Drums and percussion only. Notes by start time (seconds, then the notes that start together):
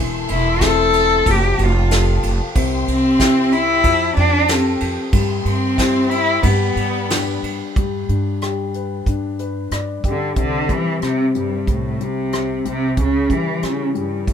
0.28 ride
0.61 kick, snare, ride
0.93 ride
1.26 kick, ride
1.59 ride
1.91 snare, ride
2.23 ride
2.55 kick, ride
2.88 ride
3.20 kick, snare, ride
3.52 ride
3.84 kick, ride
4.16 ride
4.48 snare, ride
4.80 ride
5.13 kick, ride
5.46 ride
5.78 kick, snare, ride
6.11 ride
6.43 kick, ride
6.77 ride
7.10 snare, ride
7.43 ride
7.76 kick, closed hi-hat
8.09 closed hi-hat
8.41 cross-stick, closed hi-hat
8.74 closed hi-hat
9.06 kick, closed hi-hat
9.39 closed hi-hat
9.71 cross-stick, closed hi-hat
10.04 kick, closed hi-hat
10.36 kick, closed hi-hat
10.69 kick, closed hi-hat
11.02 cross-stick, closed hi-hat
11.35 closed hi-hat
11.67 kick, closed hi-hat
12.00 closed hi-hat
12.32 cross-stick, closed hi-hat
12.65 closed hi-hat
12.97 kick, closed hi-hat
13.30 kick, closed hi-hat
13.62 cross-stick, closed hi-hat
13.95 closed hi-hat
14.27 kick, closed hi-hat